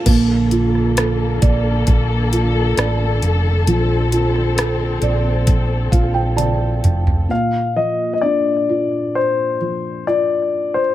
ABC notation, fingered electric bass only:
X:1
M:4/4
L:1/8
Q:1/4=66
K:Bb
V:1 name="Fingered electric bass" clef=bass
B,,,3 B,,, B,,,2 A,,, F,,, | B,,,3 B,,,2 B,,,2 F,,, | z8 |]